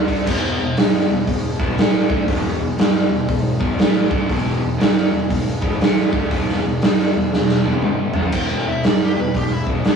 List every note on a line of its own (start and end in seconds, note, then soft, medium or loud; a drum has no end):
0.00 0.26 D2 medium
0.08 0.25 D3 medium
0.08 0.26 A3 medium
0.08 0.26 D4 medium
0.08 kick medium
0.08 open hi-hat soft
0.27 0.57 E1 medium
0.27 0.57 E2 loud
0.27 0.58 B2 loud
0.27 0.58 E3 loud
0.27 kick loud
0.27 crash loud
0.59 0.76 E1 medium
0.59 0.73 E2 medium
0.59 0.74 B2 medium
0.77 1.07 G1 medium
0.77 1.08 G2 medium
0.77 1.09 D3 medium
0.77 1.09 G3 medium
0.77 snare loud
0.77 open hi-hat medium
0.94 snare soft
1.09 1.27 E1 medium
1.09 1.24 E2 medium
1.09 1.24 B2 medium
1.27 1.57 E1 medium
1.27 1.54 E2 medium
1.27 1.53 B2 medium
1.27 kick medium
1.27 open hi-hat medium
1.60 1.77 E1 medium
1.60 1.77 E2 medium
1.60 1.77 B2 medium
1.60 1.77 E3 medium
1.60 kick loud
1.78 2.08 A1 loud
1.78 2.09 A2 loud
1.78 2.09 E3 loud
1.78 2.09 A3 loud
1.78 snare loud
1.78 open hi-hat medium
2.09 2.27 D2 loud
2.09 2.28 D3 medium
2.09 2.28 A3 loud
2.09 2.28 D4 loud
2.09 kick loud
2.28 2.58 E1 medium
2.28 2.59 E2 medium
2.28 2.60 B2 medium
2.28 2.60 E3 loud
2.28 kick loud
2.28 open hi-hat medium
2.59 2.77 E1 medium
2.59 2.75 E2 medium
2.59 2.75 B2 medium
2.78 3.08 G1 medium
2.78 3.10 G2 medium
2.78 3.10 D3 medium
2.78 3.10 G3 loud
2.78 snare loud
2.78 open hi-hat medium
3.10 3.27 E1 medium
3.10 3.25 E2 medium
3.10 3.26 B2 medium
3.28 3.59 E1 medium
3.28 3.55 E2 medium
3.28 3.55 B2 medium
3.28 kick medium
3.28 open hi-hat medium
3.59 3.77 E1 loud
3.59 3.78 E2 medium
3.59 3.77 B2 medium
3.59 3.77 E3 medium
3.59 kick loud
3.78 4.08 A1 loud
3.78 4.09 A2 loud
3.78 4.10 E3 loud
3.78 4.09 A3 loud
3.78 snare loud
3.78 open hi-hat medium
4.09 4.29 D2 loud
4.09 4.28 D3 loud
4.09 4.29 A3 loud
4.09 4.29 D4 loud
4.09 kick loud
4.29 4.59 E1 loud
4.29 4.60 E2 loud
4.29 4.61 B2 loud
4.29 4.61 E3 loud
4.29 kick loud
4.29 open hi-hat medium
4.61 4.79 E1 medium
4.61 4.76 E2 medium
4.61 4.77 B2 medium
4.78 5.10 G1 medium
4.78 5.10 G2 loud
4.78 5.11 D3 medium
4.78 5.11 G3 medium
4.78 snare loud
4.78 open hi-hat medium
4.97 snare soft
5.11 5.29 E1 medium
5.11 5.26 E2 medium
5.11 5.27 B2 medium
5.29 5.61 E1 medium
5.29 5.56 E2 medium
5.29 5.56 B2 medium
5.29 kick medium
5.29 open hi-hat medium
5.61 5.80 E1 loud
5.61 5.80 E2 medium
5.61 5.80 B2 medium
5.61 5.79 E3 loud
5.61 kick loud
5.80 6.11 A1 loud
5.80 6.12 A2 loud
5.80 6.12 E3 loud
5.80 6.11 A3 loud
5.80 snare loud
5.80 open hi-hat medium
6.12 6.30 D2 medium
6.12 6.31 D3 medium
6.12 6.31 A3 loud
6.12 6.31 D4 medium
6.12 kick loud
6.30 6.62 E1 loud
6.30 6.62 E2 loud
6.30 6.62 B2 medium
6.30 6.63 E3 loud
6.30 kick loud
6.30 open hi-hat medium
6.48 snare soft
6.63 6.81 E1 medium
6.63 6.78 E2 medium
6.63 6.79 B2 medium
6.82 7.12 G1 medium
6.82 7.13 G2 medium
6.82 7.13 D3 medium
6.82 7.14 G3 medium
6.82 snare loud
6.82 open hi-hat medium
6.99 snare soft
7.14 7.32 E1 medium
7.14 7.29 E2 medium
7.14 7.29 B2 medium
7.32 7.63 E1 medium
7.32 7.58 E2 medium
7.32 7.58 B2 medium
7.32 snare medium
7.49 snare medium
7.64 7.82 E1 medium
7.64 7.83 E2 medium
7.64 7.83 B2 medium
7.64 7.83 E3 loud
7.73 high tom medium
7.82 8.13 G1 loud
7.82 8.14 G2 medium
7.82 8.15 D3 medium
7.82 8.15 G3 loud
7.82 mid tom medium
8.13 8.32 A#1 medium
8.13 8.33 A#2 medium
8.13 8.34 F3 medium
8.13 8.34 A#3 loud
8.13 floor tom loud
8.23 floor tom medium
8.32 8.63 E1 medium
8.32 8.65 E2 medium
8.32 8.66 B2 loud
8.32 8.66 E3 loud
8.32 8.66 G5 medium
8.32 kick medium
8.32 crash loud
8.49 snare soft
8.66 8.83 E1 medium
8.66 8.81 E2 medium
8.66 8.81 B2 medium
8.66 8.84 E5 medium
8.84 9.14 G1 medium
8.84 9.15 G2 medium
8.84 9.15 D3 medium
8.84 9.16 G3 loud
8.84 9.02 D5 medium
8.84 snare loud
8.84 open hi-hat medium
9.04 9.19 G4 medium
9.17 9.34 E1 medium
9.17 9.32 E2 medium
9.17 9.32 B2 medium
9.17 9.36 B4 medium
9.34 9.65 E1 medium
9.34 9.61 E2 medium
9.34 9.61 B2 medium
9.34 9.52 G4 medium
9.34 kick medium
9.34 open hi-hat medium
9.53 9.69 E4 medium
9.67 9.84 E1 medium
9.67 9.85 E2 medium
9.67 9.85 B2 medium
9.67 9.85 E3 medium
9.67 kick loud
9.84 9.96 A1 medium
9.84 9.96 A2 medium
9.84 9.96 E3 loud
9.84 9.96 A3 loud
9.84 snare loud
9.84 open hi-hat soft
9.89 9.96 D4 medium